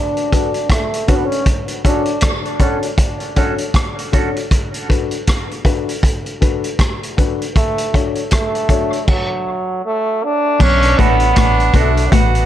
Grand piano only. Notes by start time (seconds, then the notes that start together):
0.16 A4 B4
0.32 D4 F#4 A4 B4
1.07 D4 F#4 A4 B4
1.84 D4 F#4 A4 C#5
2.60 D4 F#4 A4 C#5
3.21 A4 C#5
3.36 D4 F#4 A4 C#5
4.12 D4 F#4 A4 C#5
4.88 D4 F#4 A4 B4
5.64 D4 F#4 A4 B4
6.26 A4 B4
6.40 D4 F#4 A4 B4
7.17 D4 F#4 A4 B4
7.93 D4 F#4 A4 C#5
8.69 D4 F#4 A4 C#5
10.98 D4 F#4 A4 B4
11.74 D4 F#4 A4 B4
12.35 A4 B4